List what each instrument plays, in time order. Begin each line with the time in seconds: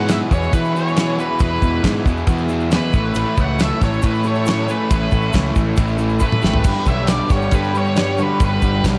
Already playing: picked electric bass G#2, overdriven electric guitar E3, tonewheel organ B3 E4 G#4 E5, lead electric guitar F#5
0.08 overdriven electric guitar E2 B2 E3, lead electric guitar B4 E5, snare, ride bell, shaker
0.29 overdriven electric guitar E2 B2 E3, picked electric bass E2, lead electric guitar G#4 C#5, kick, shaker
0.43 shaker
0.52 overdriven electric guitar E2 B2 E3, picked electric bass E3, lead electric guitar E4 B4, kick, ride bell, shaker
0.65 shaker
0.73 overdriven electric guitar E2 B2 E3, lead electric guitar G#4 C#5, shaker
0.88 shaker
0.95 overdriven electric guitar E2 B2 E3, snare, ride bell, shaker
1.18 overdriven electric guitar E2 B2 E3, lead electric guitar F#4 B4, shaker
1.39 overdriven electric guitar E2 B2 E3, picked electric bass E2, lead electric guitar E4 B4, kick, ride bell, shaker
1.62 overdriven electric guitar E2 B2 E3, picked electric bass E2, kick, shaker
1.82 overdriven electric guitar E2 B2 E3, picked electric bass G#2, kick, snare, ride bell, shaker
2.06 picked electric bass E2, overdriven electric guitar E2 B2 E3, kick, shaker
2.17 shaker
2.27 overdriven electric guitar E2 B2 E3, picked electric bass E2, kick, ride bell, shaker
2.38 shaker
2.49 overdriven electric guitar E2 B2 E3, shaker
2.60 shaker
2.70 overdriven electric guitar E2 B2 E3, lead electric guitar E4, snare, ride bell, shaker
2.75 lead electric guitar B4
2.93 picked electric bass A1, overdriven electric guitar A2 E3 A3, tonewheel organ C#4 E4 A4 E5, lead electric guitar E4 B4, kick, shaker
3.14 picked electric bass A1, overdriven electric guitar A2 E3 A3, ride bell, shaker
3.36 picked electric bass C#2, overdriven electric guitar A2 E3 A3, kick, shaker
3.40 lead electric guitar C#5 F#5
3.59 overdriven electric guitar A2 E3 A3, lead electric guitar A4 E5, snare, ride bell, shaker
3.81 picked electric bass A1, overdriven electric guitar A2 E3 A3, lead electric guitar A4 C#5, kick, snare, shaker
3.93 shaker
4.02 overdriven electric guitar A2 E3 A3, picked electric bass A2, lead electric guitar E4 B4, kick, ride bell, shaker
4.15 shaker
4.24 overdriven electric guitar A2 E3 A3, lead electric guitar A4 C#5, shaker
4.35 shaker
4.46 overdriven electric guitar A2 E3 A3, snare, ride bell, shaker
4.69 overdriven electric guitar A2 E3 A3, lead electric guitar G#4 B4, shaker
4.89 picked electric bass A1, overdriven electric guitar A2 E3 A3, lead electric guitar E4 B4, kick, ride bell, shaker
5.11 picked electric bass A1, overdriven electric guitar A2 E3 A3, kick, shaker
5.22 shaker
5.33 picked electric bass C#2, overdriven electric guitar A2 E3 A3, kick, snare, ride bell, shaker
5.54 picked electric bass A1, overdriven electric guitar A2 E3 A3, kick, shaker
5.76 picked electric bass A1, overdriven electric guitar A2 E3 A3, kick, ride bell, shaker
5.88 shaker
5.97 overdriven electric guitar A2 E3 A3, shaker
6.09 shaker
6.19 overdriven electric guitar A2 E3 A3, lead electric guitar E4 B4, kick, shaker
6.32 mid tom, shaker
6.42 picked electric bass G#1, overdriven electric guitar A2 E3 A3, lead electric guitar G4 B4, snare, shaker
6.54 floor tom
6.63 picked electric bass G1, overdriven electric guitar G2 D3 G3, tonewheel organ B3 D4 G4 B4, kick, crash, shaker
6.86 picked electric bass B1, overdriven electric guitar G2 D3 G3, lead electric guitar C#5 E5, kick, shaker
7.07 overdriven electric guitar G2 D3 G3, lead electric guitar B4 D5, snare, ride bell, shaker
7.29 picked electric bass G1, overdriven electric guitar G2 D3 G3, lead electric guitar G4 C#5, kick, snare, shaker
7.42 shaker
7.51 overdriven electric guitar G2 D3 G3, picked electric bass G2, lead electric guitar G4 B4, kick, ride bell, shaker
7.63 shaker
7.73 overdriven electric guitar G2 D3 G3, lead electric guitar G4, shaker
7.77 lead electric guitar C#5
7.86 shaker
7.96 overdriven electric guitar G2 D3 G3, snare, ride bell, shaker
8.18 overdriven electric guitar G2 D3 G3, lead electric guitar F#4, shaker
8.22 lead electric guitar B4
8.40 picked electric bass G1, overdriven electric guitar G2 D3 G3, lead electric guitar G4, kick, ride bell, shaker
8.45 lead electric guitar B4
8.62 picked electric bass G1, overdriven electric guitar G2 D3 G3, kick, shaker
8.84 picked electric bass B1, overdriven electric guitar G2 D3 G3, kick, snare, ride bell, shaker